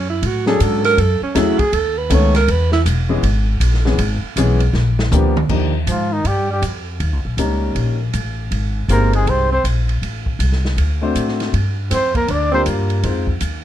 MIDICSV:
0, 0, Header, 1, 7, 480
1, 0, Start_track
1, 0, Tempo, 376884
1, 1247, Time_signature, 4, 2, 24, 8
1, 17374, End_track
2, 0, Start_track
2, 0, Title_t, "Trumpet"
2, 0, Program_c, 0, 56
2, 7518, Note_on_c, 0, 65, 61
2, 7801, Note_on_c, 0, 63, 65
2, 7820, Note_off_c, 0, 65, 0
2, 7986, Note_on_c, 0, 67, 66
2, 8005, Note_off_c, 0, 63, 0
2, 8278, Note_off_c, 0, 67, 0
2, 8304, Note_on_c, 0, 67, 67
2, 8449, Note_off_c, 0, 67, 0
2, 11358, Note_on_c, 0, 70, 82
2, 11627, Note_off_c, 0, 70, 0
2, 11659, Note_on_c, 0, 68, 79
2, 11834, Note_on_c, 0, 72, 73
2, 11853, Note_off_c, 0, 68, 0
2, 12122, Note_off_c, 0, 72, 0
2, 12129, Note_on_c, 0, 72, 83
2, 12285, Note_off_c, 0, 72, 0
2, 15208, Note_on_c, 0, 72, 78
2, 15473, Note_off_c, 0, 72, 0
2, 15496, Note_on_c, 0, 70, 76
2, 15680, Note_on_c, 0, 74, 73
2, 15699, Note_off_c, 0, 70, 0
2, 15969, Note_off_c, 0, 74, 0
2, 15974, Note_on_c, 0, 72, 91
2, 16073, Note_off_c, 0, 72, 0
2, 17374, End_track
3, 0, Start_track
3, 0, Title_t, "Alto saxophone"
3, 0, Program_c, 1, 65
3, 130, Note_on_c, 1, 64, 77
3, 336, Note_on_c, 1, 66, 78
3, 355, Note_off_c, 1, 64, 0
3, 595, Note_off_c, 1, 66, 0
3, 603, Note_on_c, 1, 68, 94
3, 802, Note_on_c, 1, 69, 85
3, 821, Note_off_c, 1, 68, 0
3, 1081, Note_off_c, 1, 69, 0
3, 1089, Note_on_c, 1, 70, 110
3, 1281, Note_on_c, 1, 69, 92
3, 1300, Note_off_c, 1, 70, 0
3, 1563, Note_off_c, 1, 69, 0
3, 1570, Note_on_c, 1, 61, 70
3, 1738, Note_on_c, 1, 64, 84
3, 1757, Note_off_c, 1, 61, 0
3, 2026, Note_on_c, 1, 68, 97
3, 2045, Note_off_c, 1, 64, 0
3, 2223, Note_on_c, 1, 69, 85
3, 2242, Note_off_c, 1, 68, 0
3, 2523, Note_on_c, 1, 71, 96
3, 2542, Note_off_c, 1, 69, 0
3, 2731, Note_on_c, 1, 73, 100
3, 2751, Note_off_c, 1, 71, 0
3, 3002, Note_off_c, 1, 73, 0
3, 3010, Note_on_c, 1, 70, 96
3, 3199, Note_on_c, 1, 71, 108
3, 3218, Note_off_c, 1, 70, 0
3, 3471, Note_off_c, 1, 71, 0
3, 3478, Note_on_c, 1, 64, 93
3, 3581, Note_off_c, 1, 64, 0
3, 7489, Note_on_c, 1, 53, 53
3, 7791, Note_on_c, 1, 51, 55
3, 7810, Note_off_c, 1, 53, 0
3, 7981, Note_on_c, 1, 55, 50
3, 8000, Note_off_c, 1, 51, 0
3, 8271, Note_off_c, 1, 55, 0
3, 8279, Note_on_c, 1, 55, 58
3, 8436, Note_off_c, 1, 55, 0
3, 11335, Note_on_c, 1, 58, 64
3, 11614, Note_off_c, 1, 58, 0
3, 11655, Note_on_c, 1, 56, 70
3, 11819, Note_on_c, 1, 60, 59
3, 11839, Note_off_c, 1, 56, 0
3, 12118, Note_off_c, 1, 60, 0
3, 12126, Note_on_c, 1, 60, 71
3, 12283, Note_off_c, 1, 60, 0
3, 15170, Note_on_c, 1, 60, 62
3, 15453, Note_off_c, 1, 60, 0
3, 15471, Note_on_c, 1, 58, 61
3, 15637, Note_on_c, 1, 62, 59
3, 15656, Note_off_c, 1, 58, 0
3, 15936, Note_off_c, 1, 62, 0
3, 15944, Note_on_c, 1, 60, 76
3, 16111, Note_off_c, 1, 60, 0
3, 17374, End_track
4, 0, Start_track
4, 0, Title_t, "Grand piano"
4, 0, Program_c, 2, 0
4, 596, Note_on_c, 2, 54, 68
4, 600, Note_on_c, 2, 61, 60
4, 605, Note_on_c, 2, 62, 64
4, 610, Note_on_c, 2, 69, 79
4, 1214, Note_off_c, 2, 54, 0
4, 1216, Note_off_c, 2, 61, 0
4, 1218, Note_off_c, 2, 62, 0
4, 1221, Note_off_c, 2, 69, 0
4, 1718, Note_on_c, 2, 54, 80
4, 1718, Note_on_c, 2, 57, 67
4, 1726, Note_on_c, 2, 64, 72
4, 1727, Note_on_c, 2, 61, 74
4, 1729, Note_on_c, 2, 68, 84
4, 1996, Note_off_c, 2, 54, 0
4, 1996, Note_off_c, 2, 57, 0
4, 2000, Note_off_c, 2, 61, 0
4, 2000, Note_off_c, 2, 64, 0
4, 2001, Note_off_c, 2, 68, 0
4, 2671, Note_on_c, 2, 57, 59
4, 2675, Note_on_c, 2, 51, 67
4, 2675, Note_on_c, 2, 59, 58
4, 2681, Note_on_c, 2, 69, 67
4, 2684, Note_on_c, 2, 61, 61
4, 2952, Note_off_c, 2, 57, 0
4, 2954, Note_off_c, 2, 51, 0
4, 2954, Note_off_c, 2, 59, 0
4, 2957, Note_off_c, 2, 69, 0
4, 2958, Note_off_c, 2, 61, 0
4, 3935, Note_on_c, 2, 52, 71
4, 3941, Note_on_c, 2, 56, 67
4, 3945, Note_on_c, 2, 59, 67
4, 3946, Note_on_c, 2, 61, 62
4, 3951, Note_on_c, 2, 68, 74
4, 4099, Note_off_c, 2, 52, 0
4, 4102, Note_off_c, 2, 56, 0
4, 4104, Note_off_c, 2, 59, 0
4, 4105, Note_off_c, 2, 61, 0
4, 4107, Note_off_c, 2, 68, 0
4, 4904, Note_on_c, 2, 52, 60
4, 4905, Note_on_c, 2, 56, 57
4, 4909, Note_on_c, 2, 59, 61
4, 4913, Note_on_c, 2, 61, 54
4, 4916, Note_on_c, 2, 68, 69
4, 5063, Note_off_c, 2, 52, 0
4, 5063, Note_off_c, 2, 56, 0
4, 5065, Note_off_c, 2, 59, 0
4, 5067, Note_off_c, 2, 61, 0
4, 5069, Note_off_c, 2, 68, 0
4, 5569, Note_on_c, 2, 52, 75
4, 5574, Note_on_c, 2, 56, 66
4, 5577, Note_on_c, 2, 59, 63
4, 5580, Note_on_c, 2, 68, 78
4, 5581, Note_on_c, 2, 61, 69
4, 5839, Note_off_c, 2, 52, 0
4, 5841, Note_off_c, 2, 56, 0
4, 5842, Note_off_c, 2, 59, 0
4, 5844, Note_off_c, 2, 61, 0
4, 5844, Note_off_c, 2, 68, 0
4, 6526, Note_on_c, 2, 53, 71
4, 6532, Note_on_c, 2, 59, 68
4, 6534, Note_on_c, 2, 58, 70
4, 6540, Note_on_c, 2, 62, 63
4, 6541, Note_on_c, 2, 67, 81
4, 6797, Note_off_c, 2, 53, 0
4, 6800, Note_off_c, 2, 59, 0
4, 6801, Note_off_c, 2, 58, 0
4, 6803, Note_off_c, 2, 62, 0
4, 6804, Note_off_c, 2, 67, 0
4, 6998, Note_on_c, 2, 53, 58
4, 6999, Note_on_c, 2, 58, 52
4, 7001, Note_on_c, 2, 62, 53
4, 7007, Note_on_c, 2, 67, 61
4, 7009, Note_on_c, 2, 63, 56
4, 7273, Note_off_c, 2, 53, 0
4, 7273, Note_off_c, 2, 58, 0
4, 7274, Note_off_c, 2, 62, 0
4, 7277, Note_off_c, 2, 67, 0
4, 7278, Note_off_c, 2, 63, 0
4, 9409, Note_on_c, 2, 55, 57
4, 9409, Note_on_c, 2, 63, 53
4, 9411, Note_on_c, 2, 58, 54
4, 9412, Note_on_c, 2, 61, 52
4, 9418, Note_on_c, 2, 70, 63
4, 10130, Note_off_c, 2, 55, 0
4, 10131, Note_off_c, 2, 63, 0
4, 10132, Note_off_c, 2, 58, 0
4, 10132, Note_off_c, 2, 61, 0
4, 10135, Note_off_c, 2, 70, 0
4, 11332, Note_on_c, 2, 56, 64
4, 11335, Note_on_c, 2, 60, 53
4, 11336, Note_on_c, 2, 63, 57
4, 11341, Note_on_c, 2, 67, 56
4, 11342, Note_on_c, 2, 72, 65
4, 12054, Note_off_c, 2, 56, 0
4, 12055, Note_off_c, 2, 60, 0
4, 12056, Note_off_c, 2, 63, 0
4, 12058, Note_off_c, 2, 67, 0
4, 12059, Note_off_c, 2, 72, 0
4, 14029, Note_on_c, 2, 57, 60
4, 14039, Note_on_c, 2, 60, 62
4, 14039, Note_on_c, 2, 62, 63
4, 14048, Note_on_c, 2, 66, 57
4, 14048, Note_on_c, 2, 72, 73
4, 14652, Note_off_c, 2, 57, 0
4, 14657, Note_off_c, 2, 60, 0
4, 14657, Note_off_c, 2, 62, 0
4, 14662, Note_off_c, 2, 66, 0
4, 14662, Note_off_c, 2, 72, 0
4, 15958, Note_on_c, 2, 55, 69
4, 15960, Note_on_c, 2, 58, 58
4, 15961, Note_on_c, 2, 62, 58
4, 15963, Note_on_c, 2, 65, 60
4, 15965, Note_on_c, 2, 70, 73
4, 16575, Note_off_c, 2, 55, 0
4, 16576, Note_off_c, 2, 58, 0
4, 16577, Note_off_c, 2, 62, 0
4, 16578, Note_off_c, 2, 65, 0
4, 16579, Note_off_c, 2, 70, 0
4, 16601, Note_on_c, 2, 60, 47
4, 16603, Note_on_c, 2, 56, 53
4, 16609, Note_on_c, 2, 65, 49
4, 16611, Note_on_c, 2, 72, 62
4, 16614, Note_on_c, 2, 63, 46
4, 16878, Note_off_c, 2, 60, 0
4, 16879, Note_off_c, 2, 56, 0
4, 16882, Note_off_c, 2, 65, 0
4, 16883, Note_off_c, 2, 72, 0
4, 16884, Note_off_c, 2, 63, 0
4, 17374, End_track
5, 0, Start_track
5, 0, Title_t, "Upright bass"
5, 0, Program_c, 3, 32
5, 0, Note_on_c, 3, 42, 79
5, 267, Note_off_c, 3, 42, 0
5, 287, Note_on_c, 3, 45, 87
5, 752, Note_off_c, 3, 45, 0
5, 770, Note_on_c, 3, 44, 90
5, 1234, Note_off_c, 3, 44, 0
5, 1240, Note_on_c, 3, 42, 91
5, 1526, Note_off_c, 3, 42, 0
5, 1719, Note_on_c, 3, 40, 87
5, 2005, Note_off_c, 3, 40, 0
5, 2196, Note_on_c, 3, 39, 86
5, 2666, Note_off_c, 3, 39, 0
5, 2673, Note_on_c, 3, 37, 94
5, 3144, Note_off_c, 3, 37, 0
5, 3157, Note_on_c, 3, 40, 94
5, 3625, Note_off_c, 3, 40, 0
5, 3636, Note_on_c, 3, 28, 91
5, 4102, Note_off_c, 3, 28, 0
5, 4110, Note_on_c, 3, 32, 90
5, 4578, Note_off_c, 3, 32, 0
5, 4586, Note_on_c, 3, 34, 95
5, 5058, Note_off_c, 3, 34, 0
5, 5073, Note_on_c, 3, 32, 93
5, 5360, Note_off_c, 3, 32, 0
5, 5552, Note_on_c, 3, 35, 86
5, 6021, Note_off_c, 3, 35, 0
5, 6028, Note_on_c, 3, 34, 85
5, 6499, Note_off_c, 3, 34, 0
5, 6515, Note_on_c, 3, 38, 96
5, 6983, Note_off_c, 3, 38, 0
5, 6993, Note_on_c, 3, 39, 78
5, 7462, Note_off_c, 3, 39, 0
5, 7472, Note_on_c, 3, 44, 83
5, 7941, Note_off_c, 3, 44, 0
5, 7950, Note_on_c, 3, 43, 78
5, 8421, Note_off_c, 3, 43, 0
5, 8429, Note_on_c, 3, 41, 79
5, 8901, Note_off_c, 3, 41, 0
5, 8916, Note_on_c, 3, 39, 78
5, 9076, Note_off_c, 3, 39, 0
5, 9076, Note_on_c, 3, 37, 50
5, 9226, Note_off_c, 3, 37, 0
5, 9234, Note_on_c, 3, 34, 58
5, 9380, Note_off_c, 3, 34, 0
5, 9388, Note_on_c, 3, 37, 73
5, 9861, Note_off_c, 3, 37, 0
5, 9872, Note_on_c, 3, 34, 77
5, 10344, Note_off_c, 3, 34, 0
5, 10363, Note_on_c, 3, 33, 82
5, 10830, Note_off_c, 3, 33, 0
5, 10838, Note_on_c, 3, 32, 77
5, 11308, Note_off_c, 3, 32, 0
5, 11315, Note_on_c, 3, 31, 87
5, 11786, Note_off_c, 3, 31, 0
5, 11798, Note_on_c, 3, 36, 84
5, 12268, Note_off_c, 3, 36, 0
5, 12278, Note_on_c, 3, 34, 81
5, 12749, Note_off_c, 3, 34, 0
5, 12760, Note_on_c, 3, 33, 75
5, 13225, Note_off_c, 3, 33, 0
5, 13233, Note_on_c, 3, 36, 84
5, 13701, Note_off_c, 3, 36, 0
5, 13709, Note_on_c, 3, 38, 78
5, 14185, Note_off_c, 3, 38, 0
5, 14201, Note_on_c, 3, 45, 81
5, 14671, Note_off_c, 3, 45, 0
5, 14686, Note_on_c, 3, 43, 76
5, 15153, Note_off_c, 3, 43, 0
5, 15164, Note_on_c, 3, 41, 78
5, 15632, Note_off_c, 3, 41, 0
5, 15648, Note_on_c, 3, 38, 83
5, 16113, Note_off_c, 3, 38, 0
5, 16126, Note_on_c, 3, 43, 81
5, 16592, Note_off_c, 3, 43, 0
5, 16602, Note_on_c, 3, 41, 88
5, 17069, Note_off_c, 3, 41, 0
5, 17079, Note_on_c, 3, 39, 75
5, 17365, Note_off_c, 3, 39, 0
5, 17374, End_track
6, 0, Start_track
6, 0, Title_t, "Muted upright bass strokes"
6, 1545, Note_on_c, 9, 29, 39
6, 1673, Note_off_c, 9, 29, 0
6, 2021, Note_on_c, 9, 29, 44
6, 2148, Note_off_c, 9, 29, 0
6, 17374, End_track
7, 0, Start_track
7, 0, Title_t, "Drums"
7, 289, Note_on_c, 9, 51, 65
7, 417, Note_off_c, 9, 51, 0
7, 589, Note_on_c, 9, 38, 49
7, 717, Note_off_c, 9, 38, 0
7, 767, Note_on_c, 9, 44, 60
7, 767, Note_on_c, 9, 51, 70
7, 895, Note_off_c, 9, 44, 0
7, 895, Note_off_c, 9, 51, 0
7, 1074, Note_on_c, 9, 38, 45
7, 1075, Note_on_c, 9, 51, 54
7, 1201, Note_off_c, 9, 38, 0
7, 1202, Note_off_c, 9, 51, 0
7, 1250, Note_on_c, 9, 51, 65
7, 1378, Note_off_c, 9, 51, 0
7, 1724, Note_on_c, 9, 38, 40
7, 1725, Note_on_c, 9, 44, 57
7, 1725, Note_on_c, 9, 51, 75
7, 1851, Note_off_c, 9, 38, 0
7, 1852, Note_off_c, 9, 44, 0
7, 1852, Note_off_c, 9, 51, 0
7, 2025, Note_on_c, 9, 36, 60
7, 2026, Note_on_c, 9, 51, 50
7, 2153, Note_off_c, 9, 36, 0
7, 2153, Note_off_c, 9, 51, 0
7, 2202, Note_on_c, 9, 51, 65
7, 2329, Note_off_c, 9, 51, 0
7, 2680, Note_on_c, 9, 44, 61
7, 2680, Note_on_c, 9, 51, 78
7, 2807, Note_off_c, 9, 44, 0
7, 2807, Note_off_c, 9, 51, 0
7, 2986, Note_on_c, 9, 38, 48
7, 2988, Note_on_c, 9, 51, 53
7, 3114, Note_off_c, 9, 38, 0
7, 3115, Note_off_c, 9, 51, 0
7, 3162, Note_on_c, 9, 51, 70
7, 3289, Note_off_c, 9, 51, 0
7, 3462, Note_on_c, 9, 38, 52
7, 3589, Note_off_c, 9, 38, 0
7, 3641, Note_on_c, 9, 44, 57
7, 3641, Note_on_c, 9, 51, 76
7, 3768, Note_off_c, 9, 44, 0
7, 3768, Note_off_c, 9, 51, 0
7, 4119, Note_on_c, 9, 51, 66
7, 4246, Note_off_c, 9, 51, 0
7, 4596, Note_on_c, 9, 44, 51
7, 4596, Note_on_c, 9, 51, 79
7, 4724, Note_off_c, 9, 44, 0
7, 4724, Note_off_c, 9, 51, 0
7, 4762, Note_on_c, 9, 38, 28
7, 4890, Note_off_c, 9, 38, 0
7, 4914, Note_on_c, 9, 38, 49
7, 5042, Note_off_c, 9, 38, 0
7, 5076, Note_on_c, 9, 51, 70
7, 5203, Note_off_c, 9, 51, 0
7, 5561, Note_on_c, 9, 44, 70
7, 5561, Note_on_c, 9, 51, 70
7, 5688, Note_off_c, 9, 44, 0
7, 5688, Note_off_c, 9, 51, 0
7, 5863, Note_on_c, 9, 51, 51
7, 5990, Note_off_c, 9, 51, 0
7, 6036, Note_on_c, 9, 38, 51
7, 6163, Note_off_c, 9, 38, 0
7, 6355, Note_on_c, 9, 38, 76
7, 6483, Note_off_c, 9, 38, 0
7, 6517, Note_on_c, 9, 47, 72
7, 6518, Note_on_c, 9, 44, 65
7, 6644, Note_off_c, 9, 47, 0
7, 6646, Note_off_c, 9, 44, 0
7, 6837, Note_on_c, 9, 47, 95
7, 6964, Note_off_c, 9, 47, 0
7, 6995, Note_on_c, 9, 36, 65
7, 6997, Note_on_c, 9, 49, 69
7, 7122, Note_off_c, 9, 36, 0
7, 7125, Note_off_c, 9, 49, 0
7, 7478, Note_on_c, 9, 44, 57
7, 7478, Note_on_c, 9, 51, 63
7, 7605, Note_off_c, 9, 44, 0
7, 7605, Note_off_c, 9, 51, 0
7, 7957, Note_on_c, 9, 51, 58
7, 8084, Note_off_c, 9, 51, 0
7, 8436, Note_on_c, 9, 44, 45
7, 8436, Note_on_c, 9, 51, 63
7, 8564, Note_off_c, 9, 44, 0
7, 8564, Note_off_c, 9, 51, 0
7, 8917, Note_on_c, 9, 51, 57
7, 9044, Note_off_c, 9, 51, 0
7, 9398, Note_on_c, 9, 44, 53
7, 9398, Note_on_c, 9, 51, 60
7, 9525, Note_off_c, 9, 44, 0
7, 9525, Note_off_c, 9, 51, 0
7, 9878, Note_on_c, 9, 51, 56
7, 10006, Note_off_c, 9, 51, 0
7, 10360, Note_on_c, 9, 44, 45
7, 10360, Note_on_c, 9, 51, 61
7, 10488, Note_off_c, 9, 44, 0
7, 10488, Note_off_c, 9, 51, 0
7, 10846, Note_on_c, 9, 51, 59
7, 10974, Note_off_c, 9, 51, 0
7, 11325, Note_on_c, 9, 44, 52
7, 11325, Note_on_c, 9, 51, 62
7, 11452, Note_off_c, 9, 44, 0
7, 11452, Note_off_c, 9, 51, 0
7, 11631, Note_on_c, 9, 51, 44
7, 11759, Note_off_c, 9, 51, 0
7, 11809, Note_on_c, 9, 51, 51
7, 11936, Note_off_c, 9, 51, 0
7, 12287, Note_on_c, 9, 44, 52
7, 12287, Note_on_c, 9, 51, 60
7, 12415, Note_off_c, 9, 44, 0
7, 12415, Note_off_c, 9, 51, 0
7, 12596, Note_on_c, 9, 51, 39
7, 12723, Note_off_c, 9, 51, 0
7, 12773, Note_on_c, 9, 51, 55
7, 12900, Note_off_c, 9, 51, 0
7, 13070, Note_on_c, 9, 36, 53
7, 13197, Note_off_c, 9, 36, 0
7, 13245, Note_on_c, 9, 44, 46
7, 13245, Note_on_c, 9, 51, 73
7, 13372, Note_off_c, 9, 44, 0
7, 13372, Note_off_c, 9, 51, 0
7, 13400, Note_on_c, 9, 38, 28
7, 13528, Note_off_c, 9, 38, 0
7, 13564, Note_on_c, 9, 38, 44
7, 13691, Note_off_c, 9, 38, 0
7, 13728, Note_on_c, 9, 51, 61
7, 13856, Note_off_c, 9, 51, 0
7, 14207, Note_on_c, 9, 44, 51
7, 14207, Note_on_c, 9, 51, 60
7, 14334, Note_off_c, 9, 44, 0
7, 14334, Note_off_c, 9, 51, 0
7, 14369, Note_on_c, 9, 38, 24
7, 14497, Note_off_c, 9, 38, 0
7, 14520, Note_on_c, 9, 51, 46
7, 14528, Note_on_c, 9, 38, 40
7, 14647, Note_off_c, 9, 51, 0
7, 14655, Note_off_c, 9, 38, 0
7, 14694, Note_on_c, 9, 51, 57
7, 14821, Note_off_c, 9, 51, 0
7, 15167, Note_on_c, 9, 38, 36
7, 15168, Note_on_c, 9, 44, 59
7, 15168, Note_on_c, 9, 51, 72
7, 15294, Note_off_c, 9, 38, 0
7, 15295, Note_off_c, 9, 44, 0
7, 15295, Note_off_c, 9, 51, 0
7, 15469, Note_on_c, 9, 36, 55
7, 15473, Note_on_c, 9, 51, 43
7, 15597, Note_off_c, 9, 36, 0
7, 15600, Note_off_c, 9, 51, 0
7, 15644, Note_on_c, 9, 51, 54
7, 15771, Note_off_c, 9, 51, 0
7, 16120, Note_on_c, 9, 44, 53
7, 16120, Note_on_c, 9, 51, 64
7, 16248, Note_off_c, 9, 44, 0
7, 16248, Note_off_c, 9, 51, 0
7, 16428, Note_on_c, 9, 51, 43
7, 16555, Note_off_c, 9, 51, 0
7, 16601, Note_on_c, 9, 51, 62
7, 16728, Note_off_c, 9, 51, 0
7, 16901, Note_on_c, 9, 36, 55
7, 17029, Note_off_c, 9, 36, 0
7, 17074, Note_on_c, 9, 44, 57
7, 17074, Note_on_c, 9, 51, 64
7, 17201, Note_off_c, 9, 44, 0
7, 17201, Note_off_c, 9, 51, 0
7, 17374, End_track
0, 0, End_of_file